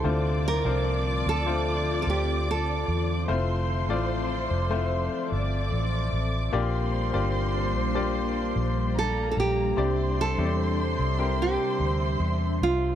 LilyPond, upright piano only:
<<
  \new Staff \with { instrumentName = "Upright piano" } { \time 4/4 \key f \major \tempo 4 = 74 <a c' d' f' c''>8. <f c' d' f' c''>4 <a c' d' f' c''>2 r16 | <a c' e' f' c''>8. <a c' e' f' d''>4 <a c' e' f' c''>2 r16 | <bes d' f' g' d''>8. <bes d' f' g' d''>4 <bes d' f' g' d''>2 r16 | <c' d' e' g' d''>8. <c' d' e' g' des'' d''>4 <c' d' e' g' bes'>2 r16 | }
  \new Staff \with { instrumentName = "Upright piano" } { \clef bass \time 4/4 \key f \major d4. r2 r8 | r1 | bes,4. r2 r8 | c4. r2 r8 | }
>>